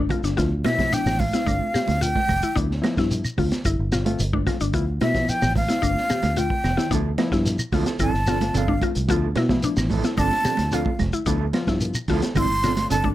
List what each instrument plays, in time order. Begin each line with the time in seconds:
0.09 reed electric piano A3 C4 F4, synth pluck F4, kick, closed hi-hat, low conga, claves, shekere
0.23 fingered electric bass G1, synth pluck D4, snare, closed hi-hat, shekere
0.36 fingered electric bass D2, reed electric piano F3 B3 E4, synth pluck F4, kick, snare, closed hi-hat, low conga, shekere
0.64 fingered electric bass B2, reed electric piano B3 E4, synth pluck E4, flute E5, snare, closed hi-hat, high conga, claves
0.78 reed electric piano F3 B3 E4, kick, snare, high conga, shekere
0.92 synth pluck D4, flute G5, muted fingered electric bass stroke, snare, closed hi-hat, shekere
1.06 fingered electric bass A1, snare, claves, shekere
1.20 flute F5, kick, open hi-hat, high conga, low conga, shekere
1.33 synth pluck E4, snare, closed hi-hat, shekere
1.46 fingered electric bass G1, reed electric piano A3 C4 F4, synth pluck D4, kick, closed hi-hat, high conga, claves, shekere
1.74 synth pluck G4, muted fingered electric bass stroke, snare, closed hi-hat, claves, shekere
1.88 fingered electric bass D2, snare, closed hi-hat, high conga, shekere
2.01 synth pluck F4, flute G5, closed hi-hat, shekere
2.16 kick, high conga
2.28 fingered electric bass F1, kick, closed hi-hat, high conga, low conga, claves, shekere
2.42 synth pluck E4, shekere
2.55 fingered electric bass D2, reed electric piano F3 B3 E4, synth pluck D4, kick, closed hi-hat, low conga, shekere
2.71 snare
2.82 reed electric piano F3 B3 E4, snare, closed hi-hat, high conga, claves
2.97 fingered electric bass G2, synth pluck E4, kick, snare, shekere
3.11 closed hi-hat, shekere
3.25 claves, shekere
3.38 fingered electric bass D2, synth pluck F4, kick, open hi-hat, high conga, low conga, shekere
3.51 snare, closed hi-hat, shekere
3.65 fingered electric bass G1, synth pluck E4, kick, closed hi-hat, claves, shekere
3.79 fingered electric bass G1
3.92 synth pluck F4, snare, closed hi-hat, claves, shekere
4.05 reed electric piano A3 C4 F4, closed hi-hat, high conga, shekere
4.19 fingered electric bass G1, closed hi-hat, shekere
4.33 synth pluck D4, kick, high conga
4.47 reed electric piano A3 C4 F4, synth pluck F4, kick, snare, closed hi-hat, low conga, claves, shekere
4.61 fingered electric bass G1, synth pluck D4, closed hi-hat, shekere
4.73 fingered electric bass D2, reed electric piano F3 B3 E4, synth pluck F4, kick, closed hi-hat, shekere
5.01 fingered electric bass B2, reed electric piano B3 E4, synth pluck E4, flute E5, snare, closed hi-hat, high conga, claves
5.14 reed electric piano F3 B3 E4, kick, snare, shekere
5.29 flute G5, muted fingered electric bass stroke, snare, closed hi-hat, shekere
5.42 fingered electric bass A1, snare, claves, shekere
5.56 flute F5, kick, open hi-hat, high conga, low conga, shekere
5.68 synth pluck E4, snare, closed hi-hat, shekere
5.82 fingered electric bass G1, reed electric piano A3 C4 F4, synth pluck D4, kick, closed hi-hat, high conga, claves, shekere
5.97 snare
6.09 synth pluck G4, muted fingered electric bass stroke, snare, closed hi-hat, low conga, claves, shekere
6.23 fingered electric bass D2, snare, closed hi-hat, high conga, shekere
6.36 synth pluck F4, flute G5, closed hi-hat, high conga, shekere
6.50 kick
6.64 fingered electric bass F1, snare, low conga, claves, shekere
6.77 synth pluck E4, snare, low conga, shekere
6.90 fingered electric bass D2, reed electric piano F3 B3 E4, clean electric guitar F3 B3 E4 A4, synth pluck D4, kick, closed hi-hat, low conga, shekere
7.18 reed electric piano F3 B3 E4, muted clean electric guitar stroke, snare, closed hi-hat, high conga, claves
7.32 fingered electric bass G2, synth pluck E4, muted clean electric guitar stroke, kick, snare, shekere
7.45 muted clean electric guitar stroke, snare, closed hi-hat, shekere
7.58 muted clean electric guitar stroke, claves, shekere
7.72 fingered electric bass D2, clean electric guitar F3 B3 E4 A4, synth pluck F4, kick, snare, open hi-hat, high conga, low conga, shekere
7.86 clean electric guitar B3 E4 A4, snare, closed hi-hat, shekere
7.99 fingered electric bass G1, clean electric guitar F3 C4 D4 A4, synth pluck E4, flute A5, kick, closed hi-hat, claves, shekere
8.13 fingered electric bass G1, muted clean electric guitar stroke, snare
8.27 clean electric guitar F3 C4 D4 A4, synth pluck F4, snare, closed hi-hat, claves, shekere
8.40 reed electric piano A3 C4 F4, muted clean electric guitar stroke, snare, closed hi-hat, high conga, shekere
8.53 fingered electric bass G1, clean electric guitar F3 C4 D4 A4, closed hi-hat, shekere
8.57 flute F5
8.68 synth pluck D4, kick, high conga
8.81 reed electric piano A3 C4 F4, synth pluck F4, muted clean electric guitar stroke, kick, closed hi-hat, high conga, low conga, claves, shekere
8.95 fingered electric bass C2, muted clean electric guitar stroke, closed hi-hat, shekere
9.08 fingered electric bass D2, reed electric piano F3 B3 E4, clean electric guitar F3 B3 E4 A4, synth pluck F4, kick, closed hi-hat, shekere
9.35 fingered electric bass B2, reed electric piano B3 E4, synth pluck E4, muted clean electric guitar stroke, snare, closed hi-hat, high conga, claves
9.49 reed electric piano F3 B3 E4, muted clean electric guitar stroke, kick, snare, high conga, shekere
9.62 synth pluck D4, muted fingered electric bass stroke, muted clean electric guitar stroke, closed hi-hat, shekere
9.77 fingered electric bass A1, muted clean electric guitar stroke, snare, claves, shekere
9.90 clean electric guitar F3 B3 E4 A4, kick, open hi-hat, high conga, low conga, shekere
10.04 clean electric guitar B3, synth pluck E4, snare, closed hi-hat, shekere
10.17 fingered electric bass G1, clean electric guitar F3 C4 D4 A4, reed electric piano A3 C4 F4, synth pluck D4, flute A5, kick, closed hi-hat, high conga, claves, shekere
10.32 muted clean electric guitar stroke, snare
10.44 clean electric guitar F3 C4 D4 A4, synth pluck G4, muted fingered electric bass stroke, snare, closed hi-hat, low conga, claves, shekere
10.57 fingered electric bass D2, muted clean electric guitar stroke, snare, closed hi-hat, high conga, shekere
10.72 clean electric guitar F3 C4 D4 A4, synth pluck F4, flute F5, closed hi-hat, shekere
10.85 kick, high conga
10.99 fingered electric bass F1, muted clean electric guitar stroke, kick, snare, closed hi-hat, high conga, low conga, claves, shekere
11.13 synth pluck E4, muted clean electric guitar stroke, shekere
11.26 fingered electric bass D2, reed electric piano F3 B3 E4, clean electric guitar F3 B3 E4 A4, synth pluck D4, kick, closed hi-hat, shekere
11.53 reed electric piano F3 B3 F4, muted clean electric guitar stroke, snare, closed hi-hat, high conga, claves
11.67 fingered electric bass G2, synth pluck E4, muted clean electric guitar stroke, kick, snare, shekere
11.81 muted clean electric guitar stroke, closed hi-hat, shekere
11.95 muted clean electric guitar stroke, claves, shekere
12.08 fingered electric bass D2, clean electric guitar F3 B3 E4 A4, synth pluck F4, kick, snare, open hi-hat, high conga, low conga, shekere
12.22 clean electric guitar B3 A4, snare, closed hi-hat, shekere
12.35 fingered electric bass G1, clean electric guitar F3 C4 D4, synth pluck E4, flute C6, muted clean electric guitar stroke, kick, closed hi-hat, high conga, claves, shekere
12.49 fingered electric bass G1, muted clean electric guitar stroke
12.62 clean electric guitar F3 C4 D4 A4, synth pluck F4, snare, closed hi-hat, low conga, claves, shekere
12.75 reed electric piano A3 C4 F4, muted clean electric guitar stroke, snare, closed hi-hat, high conga, shekere
12.90 fingered electric bass G1, clean electric guitar F3 C4 D4 A4, flute A5, closed hi-hat, shekere
13.04 synth pluck D4, kick, high conga